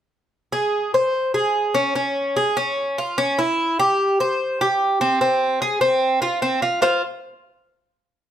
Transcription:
0, 0, Header, 1, 2, 480
1, 0, Start_track
1, 0, Key_signature, -4, "minor"
1, 0, Tempo, 405954
1, 383, Time_signature, 4, 2, 24, 8
1, 9825, End_track
2, 0, Start_track
2, 0, Title_t, "Cuban tres"
2, 0, Program_c, 0, 25
2, 621, Note_on_c, 0, 68, 71
2, 1090, Note_off_c, 0, 68, 0
2, 1114, Note_on_c, 0, 72, 58
2, 1578, Note_off_c, 0, 72, 0
2, 1588, Note_on_c, 0, 68, 64
2, 2057, Note_off_c, 0, 68, 0
2, 2063, Note_on_c, 0, 61, 73
2, 2297, Note_off_c, 0, 61, 0
2, 2311, Note_on_c, 0, 61, 62
2, 2780, Note_off_c, 0, 61, 0
2, 2796, Note_on_c, 0, 68, 68
2, 3030, Note_off_c, 0, 68, 0
2, 3036, Note_on_c, 0, 61, 71
2, 3504, Note_off_c, 0, 61, 0
2, 3527, Note_on_c, 0, 65, 65
2, 3757, Note_off_c, 0, 65, 0
2, 3758, Note_on_c, 0, 61, 77
2, 3992, Note_off_c, 0, 61, 0
2, 4003, Note_on_c, 0, 64, 68
2, 4469, Note_off_c, 0, 64, 0
2, 4487, Note_on_c, 0, 67, 74
2, 4951, Note_off_c, 0, 67, 0
2, 4970, Note_on_c, 0, 72, 65
2, 5432, Note_off_c, 0, 72, 0
2, 5452, Note_on_c, 0, 67, 69
2, 5913, Note_off_c, 0, 67, 0
2, 5923, Note_on_c, 0, 60, 75
2, 6147, Note_off_c, 0, 60, 0
2, 6161, Note_on_c, 0, 60, 59
2, 6626, Note_off_c, 0, 60, 0
2, 6642, Note_on_c, 0, 68, 72
2, 6865, Note_off_c, 0, 68, 0
2, 6870, Note_on_c, 0, 60, 70
2, 7339, Note_off_c, 0, 60, 0
2, 7351, Note_on_c, 0, 65, 67
2, 7586, Note_off_c, 0, 65, 0
2, 7593, Note_on_c, 0, 60, 71
2, 7826, Note_off_c, 0, 60, 0
2, 7831, Note_on_c, 0, 65, 61
2, 8049, Note_off_c, 0, 65, 0
2, 8063, Note_on_c, 0, 65, 70
2, 8068, Note_on_c, 0, 72, 67
2, 8075, Note_on_c, 0, 77, 81
2, 8290, Note_off_c, 0, 65, 0
2, 8293, Note_off_c, 0, 72, 0
2, 8295, Note_off_c, 0, 77, 0
2, 9825, End_track
0, 0, End_of_file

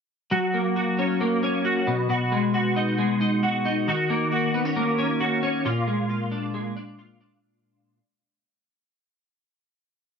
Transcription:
0, 0, Header, 1, 2, 480
1, 0, Start_track
1, 0, Key_signature, 6, "major"
1, 0, Tempo, 445765
1, 333, Time_signature, 4, 2, 24, 8
1, 10980, End_track
2, 0, Start_track
2, 0, Title_t, "Clean electric guitar"
2, 0, Program_c, 0, 27
2, 338, Note_on_c, 0, 54, 75
2, 344, Note_on_c, 0, 66, 59
2, 580, Note_on_c, 0, 58, 50
2, 816, Note_off_c, 0, 66, 0
2, 820, Note_on_c, 0, 66, 55
2, 1062, Note_on_c, 0, 61, 56
2, 1286, Note_off_c, 0, 58, 0
2, 1299, Note_on_c, 0, 58, 52
2, 1527, Note_off_c, 0, 61, 0
2, 1540, Note_on_c, 0, 61, 57
2, 1770, Note_off_c, 0, 66, 0
2, 1775, Note_on_c, 0, 66, 57
2, 2014, Note_on_c, 0, 47, 80
2, 2061, Note_off_c, 0, 58, 0
2, 2062, Note_off_c, 0, 61, 0
2, 2239, Note_off_c, 0, 47, 0
2, 2252, Note_on_c, 0, 47, 63
2, 2256, Note_off_c, 0, 66, 0
2, 2260, Note_on_c, 0, 66, 58
2, 2497, Note_on_c, 0, 56, 50
2, 2529, Note_off_c, 0, 54, 0
2, 2733, Note_off_c, 0, 66, 0
2, 2737, Note_on_c, 0, 66, 58
2, 2976, Note_on_c, 0, 63, 53
2, 3203, Note_off_c, 0, 56, 0
2, 3215, Note_on_c, 0, 56, 52
2, 3450, Note_off_c, 0, 63, 0
2, 3454, Note_on_c, 0, 63, 56
2, 3690, Note_off_c, 0, 66, 0
2, 3695, Note_on_c, 0, 66, 64
2, 3931, Note_off_c, 0, 63, 0
2, 3935, Note_on_c, 0, 63, 60
2, 4166, Note_off_c, 0, 47, 0
2, 4169, Note_off_c, 0, 66, 0
2, 4177, Note_on_c, 0, 51, 74
2, 4183, Note_on_c, 0, 66, 64
2, 4217, Note_off_c, 0, 56, 0
2, 4217, Note_off_c, 0, 63, 0
2, 4414, Note_on_c, 0, 58, 58
2, 4639, Note_off_c, 0, 66, 0
2, 4652, Note_on_c, 0, 66, 63
2, 4890, Note_on_c, 0, 59, 57
2, 5010, Note_off_c, 0, 59, 0
2, 5010, Note_on_c, 0, 61, 47
2, 5125, Note_off_c, 0, 58, 0
2, 5129, Note_on_c, 0, 58, 62
2, 5354, Note_off_c, 0, 61, 0
2, 5367, Note_on_c, 0, 61, 60
2, 5591, Note_off_c, 0, 66, 0
2, 5604, Note_on_c, 0, 66, 61
2, 5833, Note_off_c, 0, 61, 0
2, 5846, Note_on_c, 0, 61, 60
2, 6083, Note_off_c, 0, 66, 0
2, 6085, Note_on_c, 0, 46, 68
2, 6089, Note_off_c, 0, 51, 0
2, 6091, Note_on_c, 0, 65, 63
2, 6132, Note_off_c, 0, 61, 0
2, 6321, Note_off_c, 0, 58, 0
2, 6325, Note_on_c, 0, 56, 55
2, 6561, Note_off_c, 0, 65, 0
2, 6565, Note_on_c, 0, 65, 57
2, 6801, Note_on_c, 0, 62, 51
2, 7039, Note_off_c, 0, 56, 0
2, 7044, Note_on_c, 0, 56, 58
2, 7281, Note_off_c, 0, 62, 0
2, 7285, Note_on_c, 0, 62, 58
2, 7520, Note_off_c, 0, 65, 0
2, 7524, Note_on_c, 0, 65, 58
2, 7756, Note_off_c, 0, 62, 0
2, 7761, Note_on_c, 0, 62, 55
2, 8590, Note_off_c, 0, 62, 0
2, 8592, Note_off_c, 0, 46, 0
2, 8592, Note_off_c, 0, 56, 0
2, 8592, Note_off_c, 0, 65, 0
2, 10980, End_track
0, 0, End_of_file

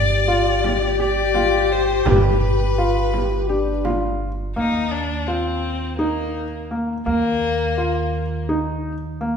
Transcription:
0, 0, Header, 1, 6, 480
1, 0, Start_track
1, 0, Key_signature, -3, "major"
1, 0, Tempo, 713436
1, 1390, Time_signature, 7, 3, 24, 8
1, 6303, End_track
2, 0, Start_track
2, 0, Title_t, "Felt piano"
2, 0, Program_c, 0, 0
2, 188, Note_on_c, 0, 65, 74
2, 476, Note_off_c, 0, 65, 0
2, 670, Note_on_c, 0, 67, 77
2, 814, Note_off_c, 0, 67, 0
2, 909, Note_on_c, 0, 65, 64
2, 1196, Note_off_c, 0, 65, 0
2, 1388, Note_on_c, 0, 67, 81
2, 1676, Note_off_c, 0, 67, 0
2, 1872, Note_on_c, 0, 65, 68
2, 2159, Note_off_c, 0, 65, 0
2, 2350, Note_on_c, 0, 67, 69
2, 2494, Note_off_c, 0, 67, 0
2, 2588, Note_on_c, 0, 65, 61
2, 2876, Note_off_c, 0, 65, 0
2, 3070, Note_on_c, 0, 58, 72
2, 3357, Note_off_c, 0, 58, 0
2, 3551, Note_on_c, 0, 65, 62
2, 3838, Note_off_c, 0, 65, 0
2, 4029, Note_on_c, 0, 63, 63
2, 4317, Note_off_c, 0, 63, 0
2, 4514, Note_on_c, 0, 58, 56
2, 4657, Note_off_c, 0, 58, 0
2, 4751, Note_on_c, 0, 58, 74
2, 5038, Note_off_c, 0, 58, 0
2, 5232, Note_on_c, 0, 65, 64
2, 5520, Note_off_c, 0, 65, 0
2, 5712, Note_on_c, 0, 63, 62
2, 5999, Note_off_c, 0, 63, 0
2, 6196, Note_on_c, 0, 58, 59
2, 6303, Note_off_c, 0, 58, 0
2, 6303, End_track
3, 0, Start_track
3, 0, Title_t, "French horn"
3, 0, Program_c, 1, 60
3, 0, Note_on_c, 1, 67, 104
3, 2348, Note_on_c, 1, 62, 70
3, 2359, Note_off_c, 1, 67, 0
3, 2829, Note_off_c, 1, 62, 0
3, 6303, End_track
4, 0, Start_track
4, 0, Title_t, "Violin"
4, 0, Program_c, 2, 40
4, 0, Note_on_c, 2, 74, 87
4, 675, Note_off_c, 2, 74, 0
4, 683, Note_on_c, 2, 74, 81
4, 1155, Note_on_c, 2, 72, 69
4, 1165, Note_off_c, 2, 74, 0
4, 1394, Note_on_c, 2, 71, 74
4, 1404, Note_off_c, 2, 72, 0
4, 2591, Note_off_c, 2, 71, 0
4, 3071, Note_on_c, 2, 63, 77
4, 3301, Note_on_c, 2, 62, 73
4, 3312, Note_off_c, 2, 63, 0
4, 3543, Note_on_c, 2, 60, 73
4, 3553, Note_off_c, 2, 62, 0
4, 4017, Note_off_c, 2, 60, 0
4, 4021, Note_on_c, 2, 58, 61
4, 4479, Note_off_c, 2, 58, 0
4, 4752, Note_on_c, 2, 58, 91
4, 5685, Note_off_c, 2, 58, 0
4, 6303, End_track
5, 0, Start_track
5, 0, Title_t, "Upright bass"
5, 0, Program_c, 3, 32
5, 0, Note_on_c, 3, 31, 73
5, 1365, Note_off_c, 3, 31, 0
5, 1393, Note_on_c, 3, 31, 67
5, 3044, Note_off_c, 3, 31, 0
5, 3072, Note_on_c, 3, 39, 58
5, 4725, Note_off_c, 3, 39, 0
5, 4753, Note_on_c, 3, 39, 62
5, 6303, Note_off_c, 3, 39, 0
5, 6303, End_track
6, 0, Start_track
6, 0, Title_t, "Frame drum"
6, 433, Note_on_c, 9, 64, 50
6, 500, Note_off_c, 9, 64, 0
6, 904, Note_on_c, 9, 64, 47
6, 971, Note_off_c, 9, 64, 0
6, 1383, Note_on_c, 9, 64, 66
6, 1450, Note_off_c, 9, 64, 0
6, 2111, Note_on_c, 9, 64, 43
6, 2178, Note_off_c, 9, 64, 0
6, 2590, Note_on_c, 9, 64, 44
6, 2657, Note_off_c, 9, 64, 0
6, 6303, End_track
0, 0, End_of_file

